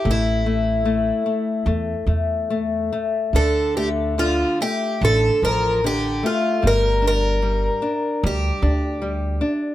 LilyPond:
<<
  \new Staff \with { instrumentName = "Twelve-string acoustic guitar" } { \time 4/4 \key d \minor \tempo 4 = 74 e'2 r2 | a'8 g'8 f'8 g'8 a'8 bes'8 g'8 f'8 | bes'8 bes'4. g'4. r8 | }
  \new Staff \with { instrumentName = "Nylon-string guitar" } { \time 4/4 \key d \minor a8 a8 a8 a8 a8 a8 a8 a8 | d8 a8 d8 a8 d8 f8 d8 a8 | g8 d'8 g8 d'8 g8 d'8 g8 d'8 | }
  \new Staff \with { instrumentName = "Upright bass" } { \clef bass \time 4/4 \key d \minor a,,2 e,8 e,4. | d,2 a,,8 a,,4. | g,,2 d,8 d,4. | }
>>